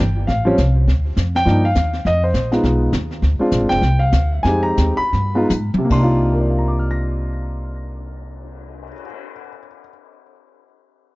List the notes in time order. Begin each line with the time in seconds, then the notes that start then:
Already playing: G5
0.00 G1
0.27 A1 F5, brush sweep, kick, snare
0.45 F3 G3 C4 C#4
0.58 C2, kick, snare, hi-hat pedal
0.87 D2, brush sweep, kick, snare
1.17 F2, kick, snare, hi-hat pedal
1.35 G5, snare
1.45 G2 F3 A#3 D4 D#4, brush sweep, kick, snare
1.65 F5
1.75 D#2, kick, snare, hi-hat pedal
1.93 snare
2.05 F2 D#5, brush sweep, kick, snare
2.24 C5
2.34 A#1, kick, snare, hi-hat pedal
2.51 G#3 B3 D#4 F4, snare
2.63 B1, brush sweep, kick, snare
2.93 D#2, kick, snare, hi-hat pedal
3.11 snare
3.22 D2, brush sweep, kick, snare
3.39 G#3 C4 D4 F4, muted upright bass stroke
3.51 A#1, kick, snare, hi-hat pedal
3.61 G#1
3.69 F1 G5, snare
3.82 C2, brush sweep, kick, snare
3.99 F5
4.12 D2, kick, snare, hi-hat pedal
4.43 F2 G#3 C4 D#4 G4 G#5, brush sweep, kick, snare
4.63 A#5
4.77 D#2, kick, snare, hi-hat pedal
4.97 B5, muted upright bass stroke
5.13 G2, brush sweep, kick, snare
5.35 G#3 B3 D#4 F4
5.50 G#2, hi-hat pedal, high tom
5.74 muted upright bass stroke, high tom
5.78 C3
5.85 A#3
5.90 C2 D4 C6, kick, crash
5.97 D#4
6.03 F4
6.16 cymbal swell
6.34 A#4
6.41 D5
6.50 F5
6.58 A#5
6.68 D6
6.79 F6
6.91 A#6